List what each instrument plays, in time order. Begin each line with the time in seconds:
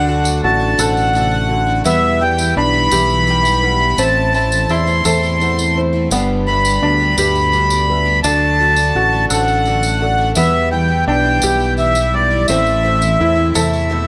Already playing: fingered electric bass D2, grand piano D2 D3 F#3 D4 A4 D5, steel-string acoustic guitar D3 A4, upright piano D4
0.07 twelve-string acoustic guitar D3 A3 D4 F#4, grand piano F#3 D4 A4 D5, steel-string acoustic guitar F#4, accordion F#5
0.24 twelve-string acoustic guitar A3 D4 F#4, tambourine
0.43 fingered electric bass A1, grand piano F#3 D4 A4 E5, steel-string acoustic guitar D4, upright piano F#4, accordion A5
0.60 twelve-string acoustic guitar A3 D4 F#4
0.78 fingered electric bass A1, steel-string acoustic guitar B2, twelve-string acoustic guitar D3 A3 D4 F#4, grand piano F#3 D4 A4 C5, upright piano A4, accordion F#5, tambourine
0.97 tambourine
1.13 steel-string acoustic guitar C3, twelve-string acoustic guitar D3 A3 D4 F#4, grand piano F#3 D4 A4 D5, tambourine
1.31 twelve-string acoustic guitar A3 D4 F#4
1.49 steel-string acoustic guitar D3, grand piano F#3 D4 A4 D5
1.67 twelve-string acoustic guitar A3 D4 F#4
1.84 twelve-string acoustic guitar E2 B2 E3 G3 B3 E4, fingered electric bass E2, grand piano E2 E3 G3 E4 B4 E5, steel-string acoustic guitar E3 B4, upright piano B3, accordion E5, tambourine
2.19 twelve-string acoustic guitar E3 G3 E4, grand piano G3 E4 B4 D5, steel-string acoustic guitar G4, accordion G5
2.37 twelve-string acoustic guitar E3 G3 B3 E4, tambourine
2.56 fingered electric bass B1, grand piano G3 E4 B4 E5, steel-string acoustic guitar B3, upright piano D4, accordion B5
2.73 twelve-string acoustic guitar E3 G3 B3 E4
2.90 fingered electric bass B1, twelve-string acoustic guitar E2 B2 E3 G3 B3 E4, grand piano G3 E4 B4 E5, upright piano G4, steel-string acoustic guitar B4, tambourine
3.10 tambourine
3.26 twelve-string acoustic guitar E3 G3 B3 E4, grand piano G3 E4, steel-string acoustic guitar G4, tambourine
3.30 grand piano B4 G5
3.43 twelve-string acoustic guitar E3 G3 B3 E4, tambourine
3.63 grand piano G3 E4 B4 F#5, steel-string acoustic guitar B4
3.80 twelve-string acoustic guitar E3 G3 B3 E4
3.97 fingered electric bass A1, grand piano A1 A2 A3 E4 C5, twelve-string acoustic guitar A2 E3 A3 C4 E4, steel-string acoustic guitar A2 C5, upright piano C4, accordion A5, tambourine
4.01 grand piano E5
4.33 twelve-string acoustic guitar E3 A3 C4 E4, grand piano A3 E4 C5 E5, steel-string acoustic guitar C5, accordion A5, tambourine
4.51 twelve-string acoustic guitar A3 C4 E4, tambourine
4.69 fingered electric bass E2, grand piano A3 E4 C5 D5, steel-string acoustic guitar E4, upright piano E4, accordion C6, tambourine
4.86 twelve-string acoustic guitar A3 C4 E4, tambourine
5.04 fingered electric bass E2, twelve-string acoustic guitar A2 E3 A3 C4 E4, grand piano A3 E4 C5 E5, upright piano A4, steel-string acoustic guitar C5, accordion C6, tambourine
5.23 tambourine
5.38 twelve-string acoustic guitar E3 A3 C4 E4, grand piano A3 E4, steel-string acoustic guitar C5, tambourine
5.42 grand piano C5 F#5
5.57 twelve-string acoustic guitar A3 C4 E4, tambourine
5.76 grand piano A3 E4 C5 E5, steel-string acoustic guitar C5
5.93 twelve-string acoustic guitar A3 C4 E4
6.11 fingered electric bass G1, grand piano G1 G2 G3 D4 B4 D5, twelve-string acoustic guitar G2 D3 G3 B3 D4 G4, steel-string acoustic guitar G2 B4, upright piano B3, tambourine
6.47 twelve-string acoustic guitar G3 B3 D4 G4, grand piano G3 D4 B4 E5, steel-string acoustic guitar D4, accordion B5
6.65 twelve-string acoustic guitar G3 B3 D4 G4, tambourine
6.82 fingered electric bass D2, grand piano G3 D4 B4 D5, steel-string acoustic guitar B3, upright piano D4
7.00 twelve-string acoustic guitar G3 B3 D4 G4
7.17 fingered electric bass D2, twelve-string acoustic guitar G2 D3 G3 B3 D4 G4, grand piano G3 D4 B4 E5, upright piano G4, steel-string acoustic guitar B4, accordion B5, tambourine
7.35 tambourine
7.52 twelve-string acoustic guitar G3 B3 D4 G4, grand piano G3 D4 B4 D5, steel-string acoustic guitar D4, tambourine
7.70 twelve-string acoustic guitar G3 B3 D4 G4, tambourine
7.90 grand piano G3 D4 B4 E5, steel-string acoustic guitar B4
8.05 twelve-string acoustic guitar G3 B3 D4 G4
8.23 fingered electric bass D2, grand piano D2 D3 F#3 D4 A4 D5, twelve-string acoustic guitar D3 A3 D4 F#4, steel-string acoustic guitar D3 A4, upright piano D4, accordion A5, tambourine
8.59 twelve-string acoustic guitar D3 A3 D4 F#4, grand piano F#3 D4 A4 D5, steel-string acoustic guitar F#4
8.76 twelve-string acoustic guitar A3 D4 F#4, tambourine
8.95 fingered electric bass A1, grand piano F#3 D4 A4 D5, steel-string acoustic guitar D4, upright piano F#4
9.12 twelve-string acoustic guitar A3 D4 F#4
9.30 fingered electric bass A1, twelve-string acoustic guitar D3 A3 D4 F#4, grand piano F#3 D4 A4 C5, upright piano A4, steel-string acoustic guitar A4, accordion F#5, tambourine
9.48 tambourine
9.65 twelve-string acoustic guitar D3 A3 D4 F#4, grand piano F#3 D4 A4 D5, steel-string acoustic guitar F#4, tambourine
9.83 twelve-string acoustic guitar A3 D4 F#4, tambourine
10.01 grand piano F#3 D4 A4 D5, steel-string acoustic guitar A4
10.18 twelve-string acoustic guitar A3 D4 F#4
10.35 twelve-string acoustic guitar E2 B2 E3 G3 B3 E4, fingered electric bass E2, grand piano E2 E3 G3 E4 B4 E5, steel-string acoustic guitar E3 B4, upright piano B3, accordion E5, tambourine
10.71 twelve-string acoustic guitar E3 G3 B3 E4, grand piano G3 E4 B4 G5, accordion G5
10.88 twelve-string acoustic guitar E3 G3 B3 E4
11.07 fingered electric bass B1, grand piano G3 E4 B4 E5, steel-string acoustic guitar B3, upright piano D4, accordion G5
11.24 twelve-string acoustic guitar E3 G3 B3 E4
11.42 fingered electric bass B1, twelve-string acoustic guitar E2 B2 E3 G3 B3 E4, steel-string acoustic guitar E3, grand piano G3 E4 B4 E5, upright piano G4, tambourine
11.60 tambourine
11.77 twelve-string acoustic guitar E3 G3 B3 E4, grand piano G3 E4 B4 E5, accordion E5, tambourine
11.95 twelve-string acoustic guitar E3 G3 B3 E4, tambourine
12.14 steel-string acoustic guitar G3, grand piano G3 E4 B4 E5, accordion D5
12.30 twelve-string acoustic guitar E3 G3 B3 E4
12.48 fingered electric bass A1, grand piano A1 A2 A3 E4 C5 E5, twelve-string acoustic guitar A2 E3 A3 C4 E4, steel-string acoustic guitar A2 C5, upright piano C4, accordion E5, tambourine
12.66 tambourine
12.83 twelve-string acoustic guitar E3 A3 C4 E4, grand piano A3 E4 C5 E5, steel-string acoustic guitar C5
13.01 twelve-string acoustic guitar A3 C4 E4, tambourine
13.19 fingered electric bass E2, grand piano A3 E4 C5 E5, steel-string acoustic guitar E4, upright piano E4
13.36 twelve-string acoustic guitar A3 C4 E4
13.54 fingered electric bass E2, twelve-string acoustic guitar A2 E3 A3 C4 E4, steel-string acoustic guitar C3, grand piano A3 E4 C5 E5, upright piano A4, accordion E5, tambourine
13.73 tambourine
13.89 steel-string acoustic guitar B2, twelve-string acoustic guitar E3 A3 C4 E4, grand piano A3 E4 C5 E5